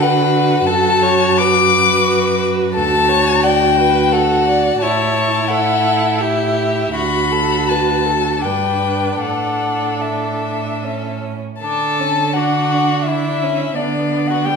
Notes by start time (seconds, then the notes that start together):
Already playing: D3 F#4
0.01 B4 F#5
0.66 F#2 A4 A5
1.02 C#5
1.38 B4 D6
2.75 D2 F#4 A4 A5
3.08 C#5
3.44 D5 G5
3.79 B4
4.13 A4 F#5
4.48 D5
4.81 A2 E4 C#5 A5
5.48 A4 F#5
6.19 G4 E5
6.94 D2 F#4 B5
7.32 A4
7.69 B4 A5
8.05 A4
8.41 G2 D4 B4 G5
9.22 A2 A4 F#5
10.02 E5
10.83 C#4
11.61 D3 D4 A4 A5
12.00 C#4
12.33 D4 F#4 F#5
13.04 D4 E5
13.08 E4
13.43 C#4
13.76 D3 B3 D4 D5
14.28 F#4 F#5
14.45 G3 G4 G5